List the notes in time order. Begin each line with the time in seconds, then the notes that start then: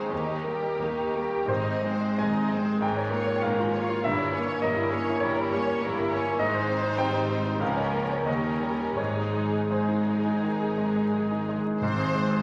Already playing: D#2 G#3 C4 D#4 G#4 C5 D#5
0.09 D#2 D#4 G4
0.14 A#3
0.26 D#5
0.44 A#3 G4 A#4
0.49 G3
0.63 D#5
0.80 D#2 A#3 D#4 G4
0.84 A#3
0.98 G4
1.13 A#3 G4 A#4
1.18 G3
1.31 G4
1.46 G#1 G#2 D#4 C5 D#5
1.51 C4
1.63 D#5
1.82 G#3 C4 C5
1.86 G#3
2.00 D#5
2.18 G#1 G#2 G#3 D#4 D#5 G#5
2.22 C4
2.34 G#4
2.49 G#3 C4 C5
2.55 G#3
2.65 G#4
2.80 G#1 G#2 G#3 C#4 A#4 G5
2.97 C#5
3.10 A#3 C#5
3.14 A#3 F4
3.27 C#5
3.36 G5
3.42 G#1 G#2 A#3 A#4 F5
3.46 G#3 C#4
3.60 F4
3.74 A#3 F4 C#5
3.89 F4
4.04 G1 G2 G3 A#4 E5
4.08 E4
4.18 C#5
4.32 A#3 C#4 C#5
4.46 C#5
4.61 G1 G2 G3 A#3 E4 A#4 D#5
4.77 E4
4.92 A#3 C#4 C#5
5.09 E4
5.20 G1 G2 G3 E4 A#4 C#5
5.37 C#5
5.51 A#3 C#4 C#5
5.67 C#5
5.82 G1 G2 G3 A#3 E4 A#4
5.97 E4
6.12 A#3 C#4 C#5
6.26 E4
6.39 G#1 G#2 G#3 D#4 C5 D#5
6.54 C5
6.69 C4
6.83 C5
6.98 G3 C4 G5
7.13 D#4
7.29 C4
7.43 D#4
7.60 C#2 F3 C#4 A#4 F5
7.76 C#5
7.92 A#3
8.11 C#5
8.26 D#2 G3 C#4 A#4 D#5
8.44 A#4
8.60 G3
8.80 A#4
8.97 G#1 G#2 G#3 D#4 G#4 C#5
9.17 G#4
9.34 G#3
9.53 G#4
9.70 G#3 D#4 G#4 C5
9.89 D#4
10.07 G#3
10.26 D#4
10.43 D#3
10.60 G#4
10.78 G#3
10.96 G#4
11.13 G#3
11.31 D#4
11.49 G#3
11.66 D#4
11.81 G#1 G#2 C4 C5
12.00 G#4
12.15 G#3
12.31 G#4